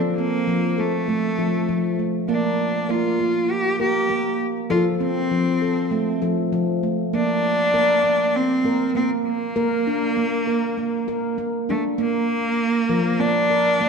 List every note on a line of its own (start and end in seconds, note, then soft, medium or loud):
0.00 0.34 F3 medium
0.00 0.18 A4 medium
0.17 0.81 A#3 medium
0.17 0.79 C4 medium
0.47 0.71 F3 medium
0.78 2.00 A3 medium
0.78 1.08 A4 medium
1.08 1.39 A3 medium
1.39 1.62 F3 medium
1.39 1.99 A4 medium
1.69 2.15 F3 medium
1.99 2.29 A3 medium
2.29 2.75 A#3 medium
2.29 2.92 D4 medium
2.89 3.13 A#3 medium
2.89 3.53 F4 medium
2.89 3.20 A#4 medium
3.20 3.79 A#3 medium
3.51 3.81 G4 medium
3.80 4.03 A#3 medium
3.80 4.38 G4 medium
3.80 4.11 A#4 medium
4.10 4.71 A#3 medium
4.70 5.17 F3 medium
4.70 4.84 F4 medium
4.70 5.01 A4 medium
5.01 5.62 C4 medium
5.01 6.19 C4 medium
5.31 5.55 F3 medium
5.62 5.92 A4 medium
5.91 6.22 A3 medium
6.22 6.46 F3 medium
6.22 6.83 A4 medium
6.53 6.99 F3 medium
6.83 7.14 A3 medium
7.13 7.60 A#3 medium
7.13 8.37 D4 loud
7.74 7.97 A#3 medium
7.74 8.04 A#4 medium
8.04 8.63 A#3 medium
8.36 8.95 C4 medium
8.65 8.88 A#3 medium
8.65 8.96 A#4 medium
8.95 9.42 A#3 medium
8.95 9.09 C4 medium
9.27 11.34 A#3 medium
9.56 10.03 A#3 medium
9.56 9.86 A#4 medium
9.87 10.47 D4 medium
10.17 10.40 A#3 medium
10.47 10.77 A#4 medium
10.78 11.07 A#3 medium
11.08 11.31 A#3 medium
11.08 11.68 A#4 medium
11.38 11.85 A#3 medium
11.69 11.83 A3 medium
11.69 11.99 D4 medium
11.98 12.68 A#3 medium
11.98 13.22 A#3 medium
12.89 13.83 F3 medium
12.89 13.20 A#4 medium
13.20 13.50 A#3 medium
13.20 13.89 D4 loud
13.50 13.80 A#4 medium
13.81 13.89 A#3 medium